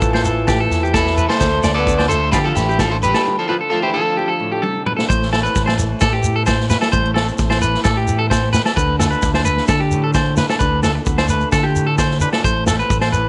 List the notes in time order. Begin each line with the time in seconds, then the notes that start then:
Already playing: A1 A2 E3 C4 F4 A4
0.01 A3, kick, shekere
0.13 C5, snare, low agogo
0.24 C4 A4, shekere
0.47 A2 G4, kick, snare, low agogo, shekere
0.60 A4
0.70 E2, snare, shekere
0.83 G4, shekere
0.93 B2 E3 E4 A4, kick, snare, low agogo, shekere
1.06 snare
1.17 C3 B4, shekere
1.29 A3 A4 C5, muted clean electric guitar stroke, snare, low agogo
1.40 D2 D3 D4 F4 C5, kick, snare, shekere
1.63 D2 F4 D5, snare, low agogo, shekere
1.74 B3 A4 B4 D5
1.87 A3 D4, kick, shekere
1.98 C5, snare, low agogo
2.08 A3 F4 A4 C5, shekere
2.32 D3 F3 F4 G4 B4, kick, snare, low agogo, shekere
2.44 F3 F4 A4
2.55 A1 A2 E3 E4 G4, snare, shekere
2.69 G4, shekere
2.79 F3 F4 A4, kick, snare, low agogo, shekere
2.91 A3 A4 C5
3.02 G3 D4 G4 B4, shekere
3.14 A4, snare, low agogo
3.26 D3 D4 F4, muted clean electric guitar stroke
3.39 F3 F4 A4
3.48 F3 F4 A4 B4
3.61 A4
3.70 F3 A3 D4 F4 A4
3.82 E3 E4 G4 C5
3.94 F3 F4 A4
4.17 F4 G4
4.28 A4
4.40 A2
4.52 G4
4.62 C3 A4, high tom
4.86 B2 B4, mid tom
4.97 A4, snare
5.09 A1 A2 A3 C5, kick, shekere
5.22 snare
5.33 C4 A4, snare, low agogo
5.43 B4, shekere
5.56 A1 A3, kick, snare, shekere
5.66 C5, snare, low agogo
5.78 E3, muted clean electric guitar stroke, shekere
6.00 A2 G4 A4, kick, snare, low agogo, shekere
6.13 G4
6.24 E2, shekere
6.36 A4
6.46 C5, kick, snare, low agogo, shekere
6.60 snare
6.70 B4, snare, shekere
6.81 A4, snare, low agogo, shekere
6.92 A1 A2 G3 C5, kick, shekere
7.05 A3
7.14 C4 A4, snare, low agogo
7.28 shekere
7.38 A1 A3, kick, snare, shekere
7.50 C5, snare, low agogo
7.60 E3 B4, shekere
7.74 snare
7.84 A2 G4 A4, kick, snare, low agogo, shekere
7.97 G4
8.08 E2, shekere
8.19 A4
8.30 C4 C5, kick, snare, low agogo, shekere
8.53 A3 B4, snare, shekere
8.65 A4, snare, low agogo, shekere
8.76 D2 D3 D4 B4, kick, shekere
8.99 F4 A4, snare, low agogo, shekere
9.11 B4, shekere
9.22 D2 D4, kick, snare, shekere
9.34 C5, snare, low agogo
9.45 B4, shekere
9.57 snare
9.68 D3 F4 A4, kick, snare, low agogo, shekere
9.80 G4
9.91 A2, shekere
10.04 A4
10.14 F4 C5, kick, snare, low agogo, shekere
10.37 D4 B4, snare, shekere
10.48 A4, snare, low agogo, shekere
10.59 D2 D3 D4 B4, kick, shekere
10.83 F4 A4, snare, low agogo, shekere
10.95 muted clean electric guitar stroke
11.05 D2 B3, kick, shekere
11.18 D4 C5, snare, low agogo
11.29 A3 B4, shekere
11.41 shekere
11.52 D3 F4 A4, kick, snare, low agogo, shekere
11.63 G4
11.76 A2, shekere
11.87 A4
11.98 F4 C5, kick, snare, low agogo, shekere
12.10 snare
12.20 D4 B4, shekere
12.33 A4, snare, low agogo
12.44 A1 A2 A3 C5, kick, shekere
12.66 C4 A4, snare, low agogo, shekere
12.79 B4, shekere
12.90 A1, kick, shekere
13.01 C5, snare, low agogo
13.12 E3 B4, shekere